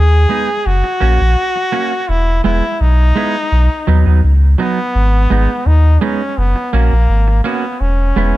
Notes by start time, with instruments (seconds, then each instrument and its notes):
Already playing: sub bass D#2, trombone G#4
0.29 clean electric guitar G#3 B3 D#4
0.66 sub bass F#1, trombone F#4
0.84 muted clean electric guitar stroke
1.00 sub bass A#1, clean electric guitar A#3 C#4 F#4
1.21 sub bass A#1
1.56 muted clean electric guitar stroke
1.72 clean electric guitar A#3 C#4 F#4
2.09 sub bass E1, trombone E4
2.44 sub bass E1, clean electric guitar G#3 B3 E4, trombone E4
2.81 sub bass B1, trombone D#4
3.16 clean electric guitar G#3 B3 E4
3.52 sub bass B1
3.87 sub bass D#2, clean electric guitar F#3 B3 D#4
4.06 sub bass D#2, clean electric guitar F#3 B3 D#4
4.24 sub bass C#2
4.58 clean electric guitar F#3 B3 D#4, trombone B3
4.95 sub bass G#1
5.30 sub bass G#1, clean electric guitar G#3 B3 D#4
5.66 sub bass D#2, trombone D#4
6.01 clean electric guitar G#3 B3 D#4, trombone C#4
6.38 sub bass F#1, trombone B3
6.56 muted clean electric guitar stroke
6.73 sub bass A#1, clean electric guitar A#3 C#4 F#4, trombone A#3
6.92 sub bass A#1
7.09 sub bass G#1
7.28 muted clean electric guitar stroke
7.44 clean electric guitar A#3 C#4 F#4, trombone B3
7.81 sub bass E1, trombone C#4
8.16 sub bass E1, clean electric guitar G#3 B3 E4